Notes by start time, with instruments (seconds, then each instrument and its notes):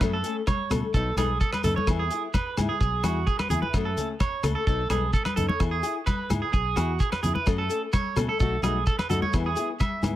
0.01 fingered electric bass F#2, nylon-string guitar F#3 A3 C#4 A4, kick, cross-stick, low agogo, shekere
0.13 clean electric guitar A4
0.24 nylon-string guitar A3 C#4 A4, closed hi-hat, shekere
0.47 clean electric guitar C#5, kick, cross-stick, high conga, low agogo, shekere
0.70 fingered electric bass B2, nylon-string guitar A3 C#4 A4, cross-stick, closed hi-hat, high conga, low conga, low agogo, shekere
0.94 fingered electric bass B1, nylon-string guitar F#3 B3 D#4, clean electric guitar A4, muted nylon-string guitar stroke, kick, shekere
1.16 fingered electric bass B1, nylon-string guitar D#4 A4, clean electric guitar G#4, cross-stick, closed hi-hat, high conga, low agogo, shekere
1.21 nylon-string guitar B3
1.41 clean electric guitar A4, kick, shekere
1.53 clean electric guitar B4, cross-stick, high conga, low agogo
1.64 fingered electric bass F#2, nylon-string guitar B3 D#4 A4, clean electric guitar A4, closed hi-hat, low conga, shekere
1.76 clean electric guitar C#5, high conga
1.87 fingered electric bass E2, nylon-string guitar B3 E4 G#4, kick, cross-stick, low agogo, shekere
1.99 clean electric guitar G#4
2.11 nylon-string guitar E4 G#4, closed hi-hat, shekere
2.34 clean electric guitar B4, kick, cross-stick, high conga, low agogo, shekere
2.57 fingered electric bass G#2, nylon-string guitar E4 G#4, cross-stick, closed hi-hat, high conga, low conga, low agogo, shekere
2.69 clean electric guitar G#4
2.81 fingered electric bass B1, clean electric guitar G#4, kick, shekere
3.03 fingered electric bass E2, nylon-string guitar E4 G#4, clean electric guitar F#4, cross-stick, closed hi-hat, high conga, low agogo, shekere
3.27 clean electric guitar G#4, kick, shekere
3.39 clean electric guitar B4, cross-stick, high conga, low agogo
3.50 fingered electric bass E2, nylon-string guitar E4 G#4, clean electric guitar G#4, closed hi-hat, low conga, shekere
3.62 clean electric guitar B4, high conga
3.74 fingered electric bass F#2, nylon-string guitar F#3 A3 C#4 A4, kick, cross-stick, low agogo, shekere
3.85 clean electric guitar A4
3.97 nylon-string guitar A3 C#4 A4, closed hi-hat, low conga, shekere
4.20 clean electric guitar C#5, kick, cross-stick, high conga, low agogo, shekere
4.43 fingered electric bass C#2, nylon-string guitar A3 C#4 A4, cross-stick, closed hi-hat, low conga, low agogo, shekere
4.55 clean electric guitar A4
4.67 fingered electric bass B1, nylon-string guitar F#3 B3 D#4 A4, clean electric guitar A4, kick, shekere
4.90 fingered electric bass B1, nylon-string guitar B3 D#4 A4, clean electric guitar G#4, cross-stick, closed hi-hat, high conga, low agogo, shekere
5.13 clean electric guitar A4, kick, shekere
5.25 clean electric guitar B4, cross-stick, high conga, low agogo
5.36 fingered electric bass F#2, nylon-string guitar B3 D#4 A4, clean electric guitar A4, closed hi-hat, low conga, shekere
5.49 clean electric guitar C#5, high conga
5.60 fingered electric bass E2, nylon-string guitar E4 G#4, muted nylon-string guitar stroke, kick, cross-stick, low agogo, shekere
5.71 clean electric guitar G#4
5.83 nylon-string guitar E4 G#4, closed hi-hat, shekere
6.06 clean electric guitar B4, kick, cross-stick, high conga, low agogo, shekere
6.30 fingered electric bass G#2, nylon-string guitar E4 G#4, cross-stick, closed hi-hat, high conga, low conga, low agogo, shekere
6.42 clean electric guitar G#4
6.53 fingered electric bass B1, clean electric guitar G#4, kick, shekere
6.76 fingered electric bass E2, nylon-string guitar E4 G#4, clean electric guitar F#4, cross-stick, closed hi-hat, high conga, low agogo, shekere
7.00 clean electric guitar G#4, kick, shekere
7.12 clean electric guitar B4, cross-stick, high conga, low agogo
7.22 fingered electric bass F2, nylon-string guitar E4, clean electric guitar G#4, muted nylon-string guitar stroke, closed hi-hat, low conga, shekere
7.35 clean electric guitar B4, high conga
7.46 fingered electric bass F#2, nylon-string guitar F#3 A3 C#4 A4, kick, cross-stick, low agogo, shekere
7.58 clean electric guitar A4
7.70 nylon-string guitar A3 C#4 A4, closed hi-hat, shekere
7.93 clean electric guitar C#5, kick, cross-stick, high conga, low agogo, shekere
8.16 fingered electric bass B2, nylon-string guitar A3 C#4 A4, cross-stick, closed hi-hat, high conga, low conga, low agogo, shekere
8.29 clean electric guitar A4
8.40 fingered electric bass B1, nylon-string guitar F#3 A3 D#4 F#4, clean electric guitar A4, kick, shekere
8.62 fingered electric bass B1, nylon-string guitar A3 D#4 F#4, clean electric guitar G#4, cross-stick, closed hi-hat, high conga, low agogo, shekere
8.86 clean electric guitar A4, kick, shekere
8.99 clean electric guitar B4, cross-stick, high conga, low agogo
9.09 fingered electric bass F#2, nylon-string guitar A3 D#4 F#4, clean electric guitar A4, closed hi-hat, low conga, shekere
9.22 clean electric guitar C#5, high conga
9.33 fingered electric bass E2, nylon-string guitar E3 B3 E4 G#4, kick, cross-stick, low agogo, shekere
9.46 clean electric guitar G#4
9.56 nylon-string guitar B3 E4 G#4, closed hi-hat, shekere
9.80 clean electric guitar E5, kick, cross-stick, high conga, low agogo, shekere
10.02 fingered electric bass G#2, nylon-string guitar B3 E4 G#4, cross-stick, closed hi-hat, high conga, low conga, low agogo, shekere